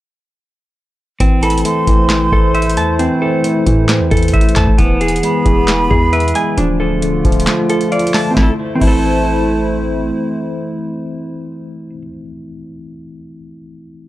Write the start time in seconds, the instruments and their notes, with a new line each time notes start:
1.20 808-style bass A1, tine electric piano E3, analog synth pad A3 E4 C5, clean electric guitar C4, kick, closed hi-hat
1.43 tine electric piano E3, clean electric guitar A4, flute B5, closed hi-hat
1.50 closed hi-hat
1.58 closed hi-hat
1.65 tine electric piano A3, flute C6, closed hi-hat
1.87 808-style bass A1, tine electric piano E3, kick, closed hi-hat
2.10 tine electric piano E3, snare, clap, closed hi-hat
2.32 808-style bass A1, tine electric piano E3, clean electric guitar A4, kick
2.54 clean electric guitar C5, tine electric piano E5, closed hi-hat
2.62 closed hi-hat
2.70 closed hi-hat
2.77 808-style bass E2, tine electric piano A3, clean electric guitar A5, closed hi-hat
2.99 tine electric piano E3, clean electric guitar C4, closed hi-hat
3.22 tine electric piano E3, clean electric guitar A4
3.44 tine electric piano A3, closed hi-hat
3.67 808-style bass A2, tine electric piano E3, kick, closed hi-hat
3.89 tine electric piano E3, snare, clap, closed hi-hat
4.00 808-style bass E2
4.11 808-style bass E2, tine electric piano E3, clean electric guitar A4, kick, closed hi-hat
4.17 closed hi-hat
4.23 closed hi-hat
4.28 closed hi-hat
4.33 808-style bass A1, clean electric guitar C5, tine electric piano E5, kick, closed hi-hat
4.41 closed hi-hat
4.49 closed hi-hat
4.56 808-style bass E2, tine electric piano A3, clean electric guitar A5, kick, snare, clap, closed hi-hat
4.67 808-style bass A1, kick
4.78 808-style bass E1, tine electric piano E3, analog synth pad E3 B3 G#4, clean electric guitar B3, kick, closed hi-hat
5.01 tine electric piano E3, clean electric guitar G#4, flute G#5, closed hi-hat
5.08 closed hi-hat
5.16 closed hi-hat
5.23 tine electric piano G#3, flute B5, closed hi-hat
5.46 808-style bass E1, tine electric piano E3, kick, closed hi-hat
5.68 tine electric piano E3, snare, clap, closed hi-hat
5.90 808-style bass E2, tine electric piano E3, clean electric guitar G#4, kick
6.13 clean electric guitar B4, tine electric piano E5, closed hi-hat
6.20 closed hi-hat
6.28 closed hi-hat
6.35 tine electric piano G#3, clean electric guitar G#5, closed hi-hat
6.58 808-style bass D1, analog synth pad D3 A3 F4, tine electric piano F3, clean electric guitar D4, closed hi-hat
6.80 tine electric piano F3, clean electric guitar A4
7.02 tine electric piano A3, closed hi-hat
7.25 808-style bass D1, tine electric piano F3, kick, closed hi-hat
7.32 closed hi-hat
7.40 closed hi-hat
7.47 tine electric piano F3, snare, clap, closed hi-hat
7.70 tine electric piano F3, clean electric guitar A4, closed hi-hat
7.81 closed hi-hat
7.92 clean electric guitar D5, tine electric piano F5, closed hi-hat
7.99 closed hi-hat
8.07 closed hi-hat
8.14 tine electric piano A3, flute A5, clean electric guitar A5, snare, clap, open hi-hat
8.31 tine electric piano E3 A3, clean electric guitar C4
8.37 808-style bass A1, analog synth pad A3 E4 C5, tine electric piano C4, clean electric guitar E4, flute A5, kick, snare
8.43 tine electric piano E4, clean electric guitar A4
8.75 tine electric piano E3, clean electric guitar C4
8.79 808-style bass A1, tine electric piano A3 C4, clean electric guitar E4, flute A5, kick, crash
8.87 tine electric piano E4, clean electric guitar A4